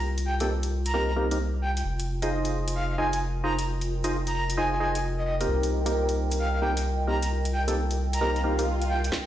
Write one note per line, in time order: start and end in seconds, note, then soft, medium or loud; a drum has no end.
0.00 1.83 C2 medium
0.00 9.26 F4 medium
0.00 1.85 A#4 medium
0.00 1.85 D#5 medium
0.00 1.85 G5 medium
0.18 closed hi-hat soft
0.25 0.35 G5 medium
0.40 0.53 A#3 medium
0.40 0.53 C4 medium
0.40 0.53 D#4 medium
0.40 0.53 G4 medium
0.40 0.53 A4 medium
0.40 0.45 G5 medium
0.40 closed hi-hat medium
0.63 closed hi-hat soft
0.86 0.92 A#5 medium
0.86 closed hi-hat medium
0.93 1.11 A#3 medium
0.93 1.11 C4 medium
0.93 1.11 D#4 medium
0.93 1.11 G4 medium
0.93 1.11 A#4 medium
0.93 1.03 A#5 medium
1.08 1.14 A#5 medium
1.16 1.29 A#3 medium
1.16 1.29 C4 medium
1.16 1.29 D#4 medium
1.16 1.29 G4 medium
1.16 1.29 A#4 medium
1.31 1.38 A#3 medium
1.31 1.38 C4 medium
1.31 1.38 D#4 medium
1.31 1.38 G4 medium
1.31 1.38 A#4 medium
1.31 closed hi-hat medium
1.62 1.71 G5 medium
1.76 1.82 G5 medium
1.76 closed hi-hat medium
1.85 5.47 F1 medium
2.00 closed hi-hat soft
2.16 9.26 A#4 medium
2.22 2.96 D#4 medium
2.22 2.96 F4 medium
2.22 2.96 G#4 medium
2.22 2.96 C5 medium
2.22 2.96 D#5 medium
2.22 closed hi-hat medium
2.27 9.26 D#5 medium
2.45 closed hi-hat soft
2.57 9.26 G5 medium
2.68 closed hi-hat medium
2.75 2.85 F5 medium
2.90 2.95 F5 medium
2.98 3.11 D#4 medium
2.98 3.11 F4 medium
2.98 3.11 G#4 medium
2.98 3.11 C5 medium
2.98 3.11 D#5 medium
2.98 3.08 G#5 medium
3.13 3.18 G#5 medium
3.13 closed hi-hat medium
3.43 3.56 D#4 medium
3.43 3.56 F4 medium
3.43 3.56 G#4 medium
3.43 3.56 C5 medium
3.43 3.56 D#5 medium
3.43 3.53 A#5 medium
3.58 3.64 A#5 medium
3.58 closed hi-hat medium
3.81 closed hi-hat soft
4.04 4.17 D#4 medium
4.04 4.17 F4 medium
4.04 4.17 G#4 medium
4.04 4.17 C5 medium
4.04 4.17 D#5 medium
4.04 closed hi-hat medium
4.27 4.32 A#5 medium
4.27 closed hi-hat soft
4.34 4.44 A#5 medium
4.50 closed hi-hat medium
4.57 4.75 D#4 medium
4.57 4.75 F4 medium
4.57 4.75 G#4 medium
4.57 4.75 C5 medium
4.57 4.75 D#5 medium
4.57 4.67 G#5 medium
4.72 4.77 G#5 medium
4.80 4.98 D#4 medium
4.80 4.98 F4 medium
4.80 4.98 G#4 medium
4.80 4.98 C5 medium
4.80 4.98 D#5 medium
4.80 4.90 G#5 medium
4.95 5.00 G#5 medium
4.95 closed hi-hat medium
5.18 5.23 D#5 medium
5.25 5.35 D#5 medium
5.40 5.82 A#3 medium
5.40 5.82 C4 medium
5.40 5.82 D#4 medium
5.40 5.82 G4 medium
5.40 5.82 A#4 medium
5.40 closed hi-hat medium
5.48 9.10 C2 medium
5.63 closed hi-hat soft
5.86 6.60 A#3 medium
5.86 6.60 C4 medium
5.86 6.60 D#4 medium
5.86 6.60 G4 medium
5.86 6.60 A#4 medium
5.86 closed hi-hat medium
6.09 closed hi-hat medium
6.31 closed hi-hat medium
6.39 6.49 F5 medium
6.54 6.59 F5 medium
6.62 6.74 A#3 medium
6.62 6.74 C4 medium
6.62 6.74 D#4 medium
6.62 6.74 G4 medium
6.62 6.74 A#4 medium
6.62 6.71 G5 medium
6.77 6.82 G5 medium
6.77 closed hi-hat medium
7.07 7.20 A#3 medium
7.07 7.20 C4 medium
7.07 7.20 D#4 medium
7.07 7.20 G4 medium
7.07 7.20 A#4 medium
7.07 7.17 A#5 medium
7.22 7.27 A#5 medium
7.22 closed hi-hat medium
7.45 closed hi-hat soft
7.53 7.62 G5 medium
7.68 7.81 A#3 medium
7.68 7.81 C4 medium
7.68 7.81 D#4 medium
7.68 7.81 G4 medium
7.68 7.81 A4 medium
7.68 7.73 G5 medium
7.68 closed hi-hat medium
7.91 closed hi-hat soft
8.13 8.20 A#5 medium
8.13 closed hi-hat medium
8.21 8.39 A#3 medium
8.21 8.39 C4 medium
8.21 8.39 D#4 medium
8.21 8.39 G4 medium
8.21 8.39 A#4 medium
8.21 8.31 A#5 medium
8.21 swell medium
8.36 8.41 A#5 medium
8.36 closed hi-hat soft
8.44 8.56 A#3 medium
8.44 8.56 C4 medium
8.44 8.56 D#4 medium
8.44 8.56 G4 medium
8.44 8.56 A#4 medium
8.59 8.65 A#3 medium
8.59 8.65 C4 medium
8.59 8.65 D#4 medium
8.59 8.65 G4 medium
8.59 8.65 A#4 medium
8.59 closed hi-hat medium
8.82 closed hi-hat soft
8.89 8.99 G5 medium
9.04 9.09 G5 medium
9.04 closed hi-hat medium
9.12 kick loud
9.12 snare soft